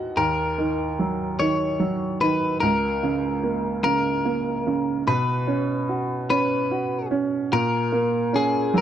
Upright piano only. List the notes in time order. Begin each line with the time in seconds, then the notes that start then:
Already playing: D#2 D#3 B3 D#4 D#5 F#5
0.17 D#2
0.58 D#3
0.99 F#3
1.40 D#3
1.80 F#3
2.21 D#3
2.62 C#2
3.03 C#3
3.43 A#3
3.85 C#3
4.25 A#3
4.67 C#3
5.07 B2
5.47 C#4
5.89 F#4
6.30 C#4
6.71 F#4
7.11 C#4
7.52 A#2
7.92 A#3
8.33 C#4
8.74 F#3